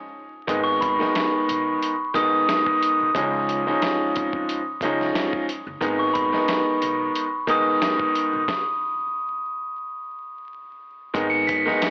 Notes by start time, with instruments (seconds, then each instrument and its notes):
0.47 upright bass G#1, grand piano D#3 G#3 B3 D#4, kick, closed hi-hat
0.64 glockenspiel C#6
0.81 glockenspiel B5, kick, closed hi-hat
0.99 grand piano D#3 G#3 B3 D#4, snare
1.15 snare, closed hi-hat
1.48 upright bass B1, closed hi-hat
1.82 closed hi-hat
2.14 upright bass B1, grand piano D#3 G#3 B3 D#4, glockenspiel D#6, kick, closed hi-hat
2.49 snare, closed hi-hat
2.67 kick
2.83 closed hi-hat
3.00 upright bass B1
3.15 upright bass C#2, grand piano F3 G#3 C#4 D#4, kick, closed hi-hat
3.49 closed hi-hat
3.67 grand piano F3 G#3 C#4 D#4
3.82 snare, closed hi-hat
4.16 upright bass F2, kick, closed hi-hat
4.33 kick
4.49 closed hi-hat
4.81 upright bass C#2, grand piano F3 G#3 C#4 D#4, kick, closed hi-hat
5.01 snare
5.15 snare, closed hi-hat
5.33 kick
5.49 closed hi-hat
5.67 upright bass F#1
5.80 upright bass G#1, grand piano D#3 G#3 B3 D#4, kick, closed hi-hat
5.99 glockenspiel C#6
6.14 glockenspiel B5, kick, closed hi-hat
6.32 grand piano D#3 G#3 B3 D#4, snare
6.48 snare, closed hi-hat
6.82 upright bass B1, closed hi-hat
7.15 closed hi-hat
7.47 upright bass B1, grand piano D#3 G#3 B3 D#4, glockenspiel D#6, kick, closed hi-hat
7.82 snare, closed hi-hat
8.00 kick
8.15 closed hi-hat
8.33 upright bass B1
8.48 kick, snare
11.14 upright bass G#1, grand piano D#3 G#3 B3 D#4, kick, closed hi-hat
11.30 glockenspiel C#7
11.47 glockenspiel B6, kick, closed hi-hat
11.65 grand piano D#3 G#3 B3 D#4, snare
11.82 snare, closed hi-hat